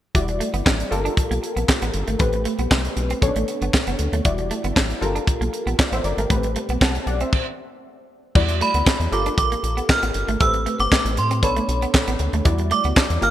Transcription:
0.15 E1 G3 E4 F#4 D5, kick, closed hi-hat
0.28 muted clean electric guitar stroke, closed hi-hat
0.40 A3, closed hi-hat
0.54 G1 B3, closed hi-hat
0.66 A1 D4, kick, snare, clap
0.80 closed hi-hat
0.91 G1 F4 G4 A4 A#4, muted clean electric guitar stroke, closed hi-hat
1.05 D4, closed hi-hat
1.17 kick, closed hi-hat
1.31 B1 A#3, closed hi-hat
1.43 muted clean electric guitar stroke, closed hi-hat
1.56 A#1 B3, closed hi-hat
1.69 kick, snare, clap
1.82 A1 B3, closed hi-hat
1.94 G1, muted clean electric guitar stroke, closed hi-hat
2.08 G#1 A3, closed hi-hat
2.19 A1 A3 C4 G4 B4, kick, closed hi-hat
2.33 muted clean electric guitar stroke, closed hi-hat
2.45 A3, closed hi-hat
2.59 B1 B3, closed hi-hat
2.71 C2 C4, kick, snare, clap
2.85 closed hi-hat
2.97 B1, muted clean electric guitar stroke, closed hi-hat
3.10 C4, closed hi-hat
3.21 B1 B3 C#4 A4 C#5, kick, closed hi-hat
3.28 D4
3.36 A1 A3, closed hi-hat
3.48 muted clean electric guitar stroke, closed hi-hat
3.62 G1 B3, closed hi-hat
3.74 kick, snare, clap
3.87 F#1 B3, closed hi-hat
3.99 D2, muted clean electric guitar stroke, closed hi-hat
4.13 D#2 A3, closed hi-hat
4.25 E1 G3 E4 F#4 D5, kick, closed hi-hat
4.38 muted clean electric guitar stroke, closed hi-hat
4.51 A3, closed hi-hat
4.64 G1 B3, closed hi-hat
4.76 A1 D4, kick, snare, clap
4.90 closed hi-hat
5.01 G1 F4 G4 A4 A#4, muted clean electric guitar stroke, closed hi-hat
5.15 D4, closed hi-hat
5.27 kick, closed hi-hat
5.41 B1 A#3, closed hi-hat
5.53 muted clean electric guitar stroke, closed hi-hat
5.66 A#1 B3, closed hi-hat
5.79 D5 F5, kick, snare, clap
5.92 A1 B3 C5 E5, closed hi-hat
6.04 G1 A#4 D5, muted clean electric guitar stroke, closed hi-hat
6.17 G#1 A3 G4 A#4, closed hi-hat
6.30 A1 A3 B3 G4 B4, kick, closed hi-hat
6.36 C4
6.43 muted clean electric guitar stroke, closed hi-hat
6.56 A3, closed hi-hat
6.69 B1 B3, closed hi-hat
6.81 C2 C4 F#5 A5, kick, snare, clap
6.95 closed hi-hat
7.07 B1 D5 F#5, muted clean electric guitar stroke, closed hi-hat
7.20 C4 C5 E5, closed hi-hat
7.33 kick, crash
8.35 E2 G3 E4 F#4 D5, kick, crash
8.49 muted clean electric guitar stroke, closed hi-hat
8.61 A3 B5, closed hi-hat
8.74 D2 B3, closed hi-hat
8.86 D4, kick, snare, clap
9.00 E2, closed hi-hat
9.12 G1 F4 G4 A4 A#4 D6, muted clean electric guitar stroke, closed hi-hat
9.26 D4, closed hi-hat
9.38 A#1 D6, kick, closed hi-hat
9.52 A#3, closed hi-hat
9.63 A#1, muted clean electric guitar stroke, closed hi-hat
9.77 B3, closed hi-hat
9.89 F6, kick, snare, clap
10.03 A1 B3, closed hi-hat
10.14 G1, muted clean electric guitar stroke, closed hi-hat
10.28 G#1 A3, closed hi-hat
10.40 A1 A3 C4 G4 B4 E6, kick, closed hi-hat
10.54 muted clean electric guitar stroke, closed hi-hat
10.66 A3, closed hi-hat
10.79 G1 B3 D6, closed hi-hat
10.92 C4, kick, snare, clap
11.05 A1, closed hi-hat
11.17 A2 C6, muted clean electric guitar stroke, closed hi-hat
11.31 C4, closed hi-hat
11.43 B1 B3 D4 A4 C#5 B5, kick, closed hi-hat
11.56 A3, closed hi-hat
11.68 B1, muted clean electric guitar stroke, closed hi-hat
11.82 B3, closed hi-hat
11.94 kick, snare, clap
12.07 A1 B3, closed hi-hat
12.19 D2, muted clean electric guitar stroke, closed hi-hat
12.33 D#2 A3, closed hi-hat
12.45 E2 G3 E4 F#4 D5, kick, closed hi-hat
12.58 muted clean electric guitar stroke, closed hi-hat
12.71 A3 D6, closed hi-hat
12.84 D2 B3, closed hi-hat
12.96 D4, kick, snare, clap
13.10 E2, closed hi-hat
13.21 G1 A#3 F4 G4 A#4 F6, muted clean electric guitar stroke, closed hi-hat

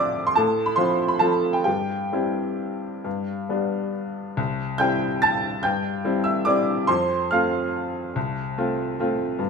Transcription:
Already playing: A2 F3 C4 F4 C5 D5 E5 C6 D6 E6
0.27 C6
0.36 A2 A4 A5
0.66 B5
0.76 F3 C4 F4 C5 C6
1.08 B5
1.19 F3 C4 F4 A4 A5
1.53 G5
1.64 G2 G4 G5
2.12 G3 C4 E4
3.04 G2
3.49 G3 B3 D4
4.37 C2
4.78 G3 C4 E4 G5 G6
5.22 A5 A6
5.63 G2 G5 G6
6.04 G3 C4 E4
6.24 E5 E6
6.45 G3 C4 E4 D5 D6
6.87 F2 C5 C6
7.31 A3 C4 F4 F5 F6
8.16 C2
8.58 A3 C4 F4
8.99 A3 C4 F4
9.39 G2

